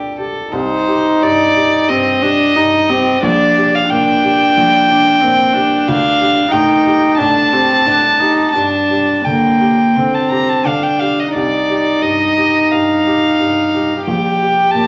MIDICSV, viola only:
0, 0, Header, 1, 2, 480
1, 0, Start_track
1, 0, Key_signature, -2, "minor"
1, 0, Tempo, 691244
1, 373, Time_signature, 4, 2, 24, 8
1, 846, Tempo, 670391
1, 2766, Tempo, 657895
1, 5646, Tempo, 700117
1, 8046, Tempo, 674916
1, 10552, End_track
2, 0, Start_track
2, 0, Title_t, "Viola"
2, 0, Program_c, 0, 41
2, 369, Note_on_c, 0, 63, 56
2, 1330, Note_on_c, 0, 60, 53
2, 1341, Note_off_c, 0, 63, 0
2, 1565, Note_on_c, 0, 62, 61
2, 1576, Note_off_c, 0, 60, 0
2, 1807, Note_on_c, 0, 63, 55
2, 1818, Note_off_c, 0, 62, 0
2, 2045, Note_on_c, 0, 60, 61
2, 2056, Note_off_c, 0, 63, 0
2, 2285, Note_off_c, 0, 60, 0
2, 2288, Note_on_c, 0, 62, 56
2, 2760, Note_off_c, 0, 62, 0
2, 2774, Note_on_c, 0, 62, 62
2, 3724, Note_on_c, 0, 60, 55
2, 3735, Note_off_c, 0, 62, 0
2, 3960, Note_on_c, 0, 62, 65
2, 3971, Note_off_c, 0, 60, 0
2, 4670, Note_off_c, 0, 62, 0
2, 4675, Note_on_c, 0, 63, 66
2, 5161, Note_on_c, 0, 62, 56
2, 5172, Note_off_c, 0, 63, 0
2, 5411, Note_on_c, 0, 60, 60
2, 5422, Note_off_c, 0, 62, 0
2, 5657, Note_on_c, 0, 62, 51
2, 5668, Note_off_c, 0, 60, 0
2, 5885, Note_on_c, 0, 63, 55
2, 5895, Note_off_c, 0, 62, 0
2, 6124, Note_off_c, 0, 63, 0
2, 6137, Note_on_c, 0, 62, 47
2, 6556, Note_off_c, 0, 62, 0
2, 6614, Note_on_c, 0, 58, 50
2, 7093, Note_on_c, 0, 60, 54
2, 7103, Note_off_c, 0, 58, 0
2, 7565, Note_on_c, 0, 62, 47
2, 7575, Note_off_c, 0, 60, 0
2, 8044, Note_off_c, 0, 62, 0
2, 8048, Note_on_c, 0, 63, 44
2, 9947, Note_off_c, 0, 63, 0
2, 9976, Note_on_c, 0, 67, 44
2, 10552, Note_off_c, 0, 67, 0
2, 10552, End_track
0, 0, End_of_file